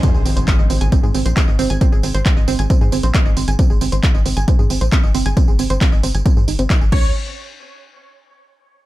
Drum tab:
CC |----------------|----------------|----------------|--------------x-|
HH |x-oxx-oxx-oxx-ox|x-oxx-oxx-oxx-ox|x-oxx-oxx-oxx-ox|x-oxx-oxx-oxx---|
TB |xxxxxxxxxxxxxxxx|xxxxxxxxxxxxxxxx|xxxxxxxxxxxxxxxx|xxxxxxxxxxxxxx--|
CP |----x-------x---|----x-------x---|----x-------x---|----x-------x---|
BD |o---o---o---o---|o---o---o---o---|o---o---o---o---|o---o---o---o-o-|

CC |----------------|
HH |----------------|
TB |----------------|
CP |----------------|
BD |----------------|